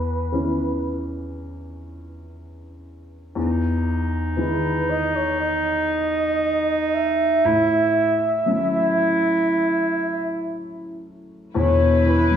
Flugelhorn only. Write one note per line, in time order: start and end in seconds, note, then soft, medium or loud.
0.00 1.05 B4 medium
4.38 4.91 B4 medium
4.90 5.17 D#5 medium
5.16 5.40 C#5 medium
5.40 6.96 D#5 medium
6.94 10.52 E5 medium
11.57 12.04 C#5 medium
12.09 12.37 B4 medium